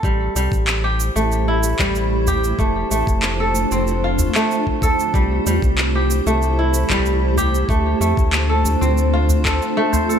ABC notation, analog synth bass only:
X:1
M:4/4
L:1/16
Q:1/4=94
K:Am
V:1 name="Analog synth bass" clef=bass
A,,,2 C,, A,,,4 A,,,4 A,,,4- A,,, | F,,,2 A,,, F,,,4 F,,,4 z4 z | C,,2 E,, C,,4 C,,4 C,,4- C,, | D,,2 F,, D,,4 D,,4- D,, z4 |]